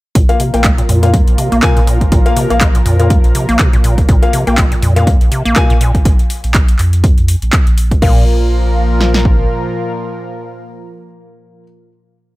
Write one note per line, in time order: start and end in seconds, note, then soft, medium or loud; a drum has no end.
0.15 0.26 A#1 loud
0.15 0.23 A#2 medium
0.15 6.01 A#2 medium
0.15 6.01 F3 medium
0.15 6.01 F4 medium
0.15 6.01 A#4 medium
0.15 kick loud
0.15 closed hi-hat medium
0.29 0.39 A#3 medium
0.29 0.39 F4 medium
0.29 0.39 F5 medium
0.29 closed hi-hat soft
0.40 0.51 C3 medium
0.40 open hi-hat medium
0.54 0.85 A#1 medium
0.54 0.63 A#3 medium
0.54 0.64 A#3 medium
0.54 0.64 F4 medium
0.54 0.64 G5 medium
0.54 closed hi-hat soft
0.64 0.72 G#3 medium
0.64 kick loud
0.64 clap loud
0.64 closed hi-hat medium
0.78 0.82 A#2 medium
0.78 closed hi-hat medium
0.89 1.22 F2 medium
0.89 1.00 A#2 medium
0.89 open hi-hat medium
1.03 1.15 A#2 medium
1.03 1.13 A#3 medium
1.03 1.13 F4 medium
1.03 1.13 F5 medium
1.03 closed hi-hat soft
1.14 1.21 A#3 medium
1.14 kick loud
1.14 closed hi-hat medium
1.27 1.36 A#1 medium
1.27 closed hi-hat soft
1.38 1.50 C3 medium
1.38 open hi-hat loud
1.52 1.60 A#1 medium
1.52 1.64 A#3 loud
1.52 closed hi-hat soft
1.63 1.74 A#2 medium
1.63 1.82 A#3 medium
1.63 1.82 F4 medium
1.63 1.82 G#5 medium
1.63 kick loud
1.63 clap loud
1.63 closed hi-hat medium
1.77 2.08 A#1 medium
1.77 1.80 A#2 loud
1.77 closed hi-hat soft
1.87 1.99 A#2 medium
1.87 open hi-hat medium
2.01 kick medium
2.01 closed hi-hat soft
2.12 2.22 A#1 loud
2.12 2.20 A#2 medium
2.12 kick loud
2.12 closed hi-hat medium
2.26 2.36 A#3 medium
2.26 2.36 F4 medium
2.26 2.36 F5 loud
2.26 closed hi-hat soft
2.37 2.48 C3 medium
2.37 open hi-hat loud
2.50 2.82 A#1 medium
2.50 2.59 A#3 medium
2.50 2.60 A#3 medium
2.50 2.60 F4 medium
2.50 2.60 F5 medium
2.50 closed hi-hat soft
2.61 2.69 G#3 medium
2.61 kick loud
2.61 clap loud
2.61 closed hi-hat medium
2.75 2.79 A#2 medium
2.75 closed hi-hat medium
2.86 3.19 F2 medium
2.86 2.97 A#2 medium
2.86 open hi-hat medium
3.00 3.12 A#2 medium
3.00 3.10 A#3 medium
3.00 3.10 F4 medium
3.00 3.10 F5 medium
3.00 closed hi-hat soft
3.10 3.18 A#3 medium
3.10 kick loud
3.10 closed hi-hat medium
3.24 3.32 A#1 medium
3.24 closed hi-hat soft
3.35 3.46 C3 medium
3.35 open hi-hat loud
3.49 3.57 A#1 medium
3.49 3.61 A#3 loud
3.49 closed hi-hat soft
3.59 3.71 A#2 medium
3.59 kick loud
3.59 clap loud
3.59 closed hi-hat medium
3.73 4.04 A#1 medium
3.73 3.77 A#2 loud
3.73 closed hi-hat soft
3.84 3.96 A#2 medium
3.84 open hi-hat medium
3.98 kick medium
3.98 closed hi-hat soft
4.09 4.19 A#1 loud
4.09 4.16 A#2 medium
4.09 kick loud
4.09 closed hi-hat medium
4.23 4.33 A#3 medium
4.23 4.33 F4 medium
4.23 4.33 F5 medium
4.23 closed hi-hat soft
4.33 4.45 C3 medium
4.33 open hi-hat loud
4.47 4.78 A#1 medium
4.47 4.56 A#3 medium
4.47 4.57 A#3 medium
4.47 4.57 F4 medium
4.47 4.57 G5 medium
4.47 closed hi-hat soft
4.58 4.65 G#3 medium
4.58 kick loud
4.58 clap loud
4.58 closed hi-hat medium
4.72 4.75 A#2 medium
4.72 closed hi-hat soft
4.82 5.16 F2 medium
4.82 4.94 A#2 medium
4.82 open hi-hat medium
4.96 5.08 A#2 medium
4.96 5.06 A#3 medium
4.96 5.06 F4 medium
4.96 5.06 F5 medium
4.96 closed hi-hat soft
5.07 5.15 A#3 medium
5.07 kick loud
5.07 closed hi-hat medium
5.21 5.29 A#1 medium
5.21 closed hi-hat soft
5.32 5.43 C3 medium
5.32 open hi-hat loud
5.45 5.54 A#1 medium
5.45 5.58 A#3 loud
5.45 closed hi-hat soft
5.56 5.68 A#2 medium
5.56 5.75 A#3 medium
5.56 5.75 F4 medium
5.56 5.75 G#5 loud
5.56 kick loud
5.56 clap loud
5.56 closed hi-hat medium
5.70 6.01 A#1 medium
5.70 5.74 A#2 loud
5.70 closed hi-hat soft
5.81 5.92 A#2 medium
5.81 open hi-hat medium
5.95 kick medium
5.95 closed hi-hat soft
6.05 6.16 A#1 loud
6.05 kick loud
6.05 closed hi-hat medium
6.19 closed hi-hat soft
6.30 open hi-hat loud
6.44 6.75 A#1 medium
6.44 closed hi-hat soft
6.54 kick loud
6.54 clap loud
6.54 closed hi-hat medium
6.68 closed hi-hat soft
6.79 7.12 F2 loud
6.79 clap soft
6.79 open hi-hat medium
6.93 closed hi-hat soft
7.04 kick loud
7.04 closed hi-hat medium
7.18 7.35 F2 loud
7.18 closed hi-hat soft
7.28 open hi-hat loud
7.42 7.50 A#1 medium
7.42 closed hi-hat soft
7.53 kick loud
7.53 clap loud
7.53 closed hi-hat medium
7.67 7.98 A#1 medium
7.67 closed hi-hat soft
7.78 open hi-hat medium
7.91 kick medium
7.91 closed hi-hat soft
8.02 9.46 A#1 loud
8.02 8.25 A#2 medium
8.02 11.63 A#2 medium
8.02 11.63 F3 medium
8.02 11.63 A#3 medium
8.02 11.63 F4 medium
8.02 11.63 A#4 medium
8.02 11.63 F5 medium
8.02 kick loud
8.02 crash medium
9.00 snare medium
9.14 snare medium
9.25 kick medium